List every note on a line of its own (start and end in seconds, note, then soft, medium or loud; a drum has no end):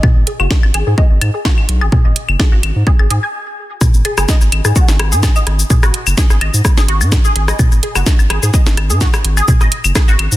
0.03 kick loud
0.03 mid tom medium
0.03 high woodblock medium
0.16 0.24 G#1 loud
0.27 0.31 G#4 medium
0.27 closed hi-hat medium
0.40 0.47 F#1 loud
0.40 0.43 F#4 loud
0.40 claves medium
0.51 kick loud
0.51 snare medium
0.63 0.71 G#1 medium
0.63 high woodblock medium
0.74 0.83 G#1 medium
0.74 0.80 G#4 loud
0.74 closed hi-hat medium
0.74 claves medium
0.87 0.94 G#2 medium
0.87 0.90 G#4 medium
0.98 1.00 D#5 medium
0.98 kick loud
1.10 1.18 G#1 medium
1.21 1.30 G#2 loud
1.21 closed hi-hat medium
1.21 claves medium
1.21 high woodblock medium
1.34 1.37 G#4 medium
1.45 1.49 F#4 loud
1.45 kick loud
1.45 snare medium
1.58 claves medium
1.69 1.83 B1 medium
1.69 closed hi-hat medium
1.81 1.89 G#1 medium
1.81 1.86 G#4 loud
1.81 high woodblock medium
1.92 1.96 G#4 medium
1.92 kick loud
1.92 mid tom medium
2.05 2.13 G#1 loud
2.05 2.07 D#5 medium
2.16 closed hi-hat medium
2.28 2.36 F#1 loud
2.28 claves medium
2.40 2.43 G#4 medium
2.40 kick loud
2.40 snare medium
2.40 high woodblock medium
2.52 2.60 G#1 medium
2.52 2.56 F#4 loud
2.63 2.72 G#1 medium
2.63 closed hi-hat medium
2.63 claves medium
2.76 2.83 G#2 medium
2.87 2.93 G#4 loud
2.87 kick loud
2.99 3.07 G#1 medium
2.99 3.03 G#4 medium
2.99 high woodblock medium
3.10 3.19 G#2 medium
3.10 3.14 G#4 loud
3.10 closed hi-hat medium
3.23 3.26 G#5 medium
3.81 kick loud
3.81 cross-stick soft
3.81 mid tom loud
3.81 cabasa medium
3.94 4.02 G#1 loud
3.94 cabasa soft
4.05 4.11 G#4 loud
4.05 closed hi-hat medium
4.05 high woodblock medium
4.17 4.25 F#1 loud
4.17 4.21 G#4 medium
4.17 cross-stick medium
4.17 cabasa soft
4.17 claves medium
4.29 4.31 D#5 medium
4.29 kick loud
4.29 snare medium
4.29 cabasa medium
4.41 4.49 G#1 medium
4.41 cabasa soft
4.52 4.61 G#1 medium
4.52 closed hi-hat medium
4.52 claves medium
4.65 4.72 G#2 loud
4.65 4.68 G#4 medium
4.65 cross-stick soft
4.65 cabasa soft
4.65 high woodblock medium
4.76 4.80 F#4 loud
4.76 kick loud
4.76 cabasa medium
4.88 5.14 G#1 medium
4.88 snare medium
4.88 cabasa soft
4.99 cross-stick medium
4.99 closed hi-hat medium
4.99 claves medium
5.12 5.28 G#2 medium
5.12 5.17 G#4 loud
5.12 cabasa soft
5.23 5.27 G#4 medium
5.23 kick loud
5.23 snare loud
5.23 cabasa medium
5.23 high woodblock medium
5.36 5.38 D#5 medium
5.36 cabasa soft
5.36 claves medium
5.47 5.63 G#1 loud
5.47 cross-stick soft
5.47 closed hi-hat medium
5.59 cabasa soft
5.70 5.74 G#4 medium
5.70 kick loud
5.70 mid tom loud
5.70 cabasa medium
5.83 5.90 G#1 loud
5.83 5.86 F#4 loud
5.83 cross-stick medium
5.83 cabasa soft
5.83 high woodblock medium
5.94 closed hi-hat medium
6.06 6.14 F#1 loud
6.06 cabasa soft
6.06 claves medium
6.17 6.23 G#4 loud
6.17 kick loud
6.17 snare medium
6.17 cabasa medium
6.30 6.38 G#1 medium
6.30 6.34 G#4 medium
6.30 cross-stick soft
6.30 cabasa soft
6.41 6.50 G#1 medium
6.41 6.44 D#5 medium
6.41 closed hi-hat medium
6.41 claves medium
6.41 high woodblock medium
6.54 6.61 G#2 loud
6.54 cabasa soft
6.65 kick loud
6.65 cross-stick medium
6.65 cabasa soft
6.77 7.03 G#1 medium
6.77 6.81 G#4 medium
6.77 snare medium
6.77 cabasa soft
6.88 6.92 F#4 loud
6.88 closed hi-hat medium
7.01 7.17 G#2 medium
7.01 cabasa soft
7.01 high woodblock medium
7.12 kick loud
7.12 cross-stick soft
7.12 snare loud
7.12 cabasa medium
7.25 7.30 G#4 loud
7.25 cabasa soft
7.36 7.52 G#1 loud
7.36 7.40 G#4 medium
7.36 closed hi-hat medium
7.48 7.50 D#5 medium
7.48 cross-stick medium
7.48 cabasa soft
7.59 kick loud
7.59 mid tom medium
7.59 cabasa soft
7.59 high woodblock medium
7.72 7.79 G#1 loud
7.72 cabasa soft
7.83 7.87 G#4 medium
7.83 closed hi-hat medium
7.95 8.03 F#1 loud
7.95 7.99 F#4 medium
7.95 cross-stick soft
7.95 cabasa soft
7.95 claves medium
8.06 kick loud
8.06 snare medium
8.06 cabasa soft
8.19 8.27 G#1 medium
8.19 cabasa soft
8.19 high woodblock medium
8.30 8.39 G#1 medium
8.30 8.36 G#4 loud
8.30 cross-stick medium
8.30 closed hi-hat medium
8.30 claves medium
8.43 8.50 G#2 loud
8.43 8.46 G#4 medium
8.43 cabasa soft
8.54 8.56 D#5 medium
8.54 kick loud
8.54 cabasa soft
8.66 8.91 G#1 medium
8.66 snare medium
8.66 cabasa soft
8.77 cross-stick soft
8.77 closed hi-hat loud
8.77 claves medium
8.77 high woodblock medium
8.90 9.06 G#2 medium
8.90 8.93 G#4 medium
8.90 cabasa soft
9.01 9.05 F#4 loud
9.01 kick loud
9.01 snare medium
9.01 cabasa medium
9.14 cross-stick medium
9.14 cabasa soft
9.14 claves medium
9.25 9.41 G#1 loud
9.25 closed hi-hat medium
9.37 9.42 G#4 loud
9.37 cabasa soft
9.37 high woodblock medium
9.48 9.52 G#4 medium
9.48 kick loud
9.48 mid tom medium
9.48 cabasa medium
9.61 9.68 G#1 loud
9.61 9.63 D#5 medium
9.61 cross-stick soft
9.61 cabasa soft
9.72 closed hi-hat medium
9.84 9.92 F#1 loud
9.84 cabasa soft
9.84 claves medium
9.95 9.99 G#4 medium
9.95 kick loud
9.95 cross-stick medium
9.95 snare medium
9.95 cabasa medium
9.95 high woodblock medium
10.08 10.16 G#1 medium
10.08 10.12 F#4 loud
10.08 cabasa soft
10.19 10.28 G#1 medium
10.19 closed hi-hat medium
10.19 claves medium
10.32 10.37 G#2 loud
10.32 cabasa soft